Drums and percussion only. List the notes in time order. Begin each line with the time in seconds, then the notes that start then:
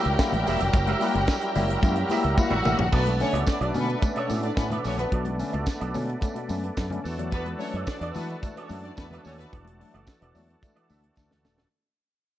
0.05 closed hi-hat
0.19 kick, snare, closed hi-hat, tambourine, muted conga
0.32 closed hi-hat, high conga, low conga
0.47 open hi-hat, tambourine, muted conga
0.60 closed hi-hat, low conga
0.73 kick, closed hi-hat, tambourine, muted conga
0.87 closed hi-hat, high conga
1.01 open hi-hat, tambourine
1.15 closed hi-hat, high conga
1.27 kick, snare, closed hi-hat, tambourine, muted conga
1.41 closed hi-hat
1.55 open hi-hat, tambourine, high conga, low conga
1.70 closed hi-hat
1.81 kick, closed hi-hat, tambourine, muted conga, high conga
1.96 closed hi-hat
2.09 open hi-hat, tambourine, high conga
2.24 closed hi-hat
2.38 kick, high tom, tambourine
2.51 mid tom, high conga, low conga
2.65 mid tom, tambourine
2.79 floor tom, low conga
2.92 kick, crash, tambourine
3.05 closed hi-hat, high conga
3.20 open hi-hat, tambourine, muted conga
3.35 closed hi-hat, high conga
3.46 kick, snare, closed hi-hat, tambourine, muted conga
3.61 closed hi-hat
3.74 open hi-hat, tambourine, high conga, low conga
3.90 closed hi-hat
4.02 kick, closed hi-hat, tambourine, high conga
4.16 closed hi-hat
4.29 open hi-hat, tambourine, muted conga, high conga
4.43 closed hi-hat
4.57 kick, snare, closed hi-hat, tambourine, muted conga
4.70 closed hi-hat, high conga, low conga
4.84 open hi-hat, tambourine, muted conga
4.98 closed hi-hat, low conga
5.12 kick, closed hi-hat
5.25 closed hi-hat, high conga
5.39 open hi-hat, tambourine
5.53 closed hi-hat, high conga
5.66 kick, snare, closed hi-hat, tambourine
5.81 closed hi-hat
5.94 open hi-hat, tambourine, high conga, low conga
6.09 closed hi-hat
6.21 kick, closed hi-hat, tambourine, high conga
6.36 closed hi-hat
6.49 open hi-hat, tambourine, high conga
6.64 closed hi-hat
6.77 kick, snare, closed hi-hat, tambourine, muted conga
6.90 closed hi-hat, high conga, low conga
7.05 open hi-hat, tambourine, muted conga
7.19 closed hi-hat, low conga
7.32 kick, closed hi-hat, tambourine
7.46 closed hi-hat, high conga
7.60 open hi-hat, tambourine
7.74 closed hi-hat, high conga
7.87 kick, snare, closed hi-hat, tambourine, muted conga
8.01 closed hi-hat
8.15 open hi-hat, tambourine, muted conga, high conga, low conga
8.30 closed hi-hat
8.42 kick, closed hi-hat, tambourine, high conga
8.57 closed hi-hat
8.69 open hi-hat, tambourine, muted conga, high conga
8.85 closed hi-hat
8.97 kick, snare, closed hi-hat, tambourine
9.11 closed hi-hat, high conga, low conga
9.25 open hi-hat, tambourine
9.39 closed hi-hat, low conga
9.53 kick, closed hi-hat, muted conga
9.65 closed hi-hat, high conga
9.81 open hi-hat
9.94 closed hi-hat, high conga
10.07 kick, snare, closed hi-hat, tambourine, muted conga
10.22 closed hi-hat
10.35 open hi-hat, tambourine, muted conga, high conga, low conga
10.50 closed hi-hat
10.62 kick, closed hi-hat, tambourine, high conga
10.76 closed hi-hat
10.90 open hi-hat, tambourine, muted conga, high conga
11.03 closed hi-hat
11.17 kick, snare, tambourine, muted conga
11.31 snare, high conga, low conga
11.45 snare, tambourine
11.58 snare, low conga